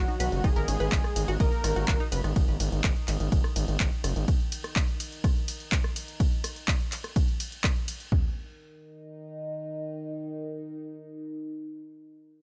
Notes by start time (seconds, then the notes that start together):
Already playing: D#3 D#4 F#4
0.08 D#4 D#5, closed hi-hat
0.20 B1 B4 B5, open hi-hat, ride
0.32 F#1, closed hi-hat
0.44 G#1 D#4 G#4 D#5, kick, cross-stick, closed hi-hat, ride
0.56 G#1 A#4 A#5, closed hi-hat
0.68 G#1 C#4 C#5, open hi-hat, ride
0.80 G#1 B4 B5, closed hi-hat
0.92 G#1, kick, clap, closed hi-hat, ride
1.04 cross-stick, closed hi-hat
1.16 G#1, open hi-hat, ride
1.28 G#1 F#4 F#5, closed hi-hat
1.40 G#1 A#4 D#5 D#6, kick, closed hi-hat, ride
1.52 closed hi-hat
1.64 G#1, cross-stick, open hi-hat, ride
1.76 G#1 F#4 F#5, closed hi-hat
1.88 G#1 F#4 F#5, kick, clap, closed hi-hat, ride
2.00 D#4 D#5, closed hi-hat
2.12 F#1 B4 B5, open hi-hat, ride
2.24 G#1, cross-stick, closed hi-hat
2.36 G#1, kick, closed hi-hat, ride
2.48 G#1, closed hi-hat
2.60 G#1, open hi-hat, ride
2.72 G#1, closed hi-hat
2.84 G#1, kick, cross-stick, clap, closed hi-hat, ride
2.96 closed hi-hat
3.08 G#1, clap, open hi-hat, ride
3.20 G#1, closed hi-hat
3.32 G#1, kick, closed hi-hat, ride
3.44 cross-stick, closed hi-hat
3.56 G#1, open hi-hat, ride
3.68 G#1, closed hi-hat
3.80 G#1, kick, clap, closed hi-hat, ride
3.92 closed hi-hat
4.04 F#1, cross-stick, open hi-hat, ride
4.16 G#1, closed hi-hat
4.28 kick, closed hi-hat, ride
4.40 closed hi-hat
4.52 open hi-hat, ride
4.64 cross-stick, closed hi-hat
4.76 kick, clap, closed hi-hat, ride
4.88 closed hi-hat
5.00 open hi-hat, ride
5.12 closed hi-hat
5.24 kick, cross-stick, closed hi-hat, ride
5.36 closed hi-hat
5.48 open hi-hat, ride
5.60 closed hi-hat
5.72 kick, clap, closed hi-hat, ride
5.84 cross-stick, closed hi-hat
5.96 open hi-hat, ride
6.08 closed hi-hat
6.20 kick, closed hi-hat, ride
6.32 closed hi-hat
6.44 cross-stick, open hi-hat, ride
6.56 closed hi-hat
6.68 kick, clap, closed hi-hat, ride
6.80 closed hi-hat
6.92 clap, open hi-hat, ride
7.04 cross-stick, closed hi-hat
7.16 kick, closed hi-hat, ride
7.28 closed hi-hat
7.40 open hi-hat, ride
7.52 closed hi-hat
7.64 kick, cross-stick, clap, closed hi-hat, ride
7.76 closed hi-hat
7.88 open hi-hat, ride
8.00 closed hi-hat
8.12 D#3 D#4, kick, floor tom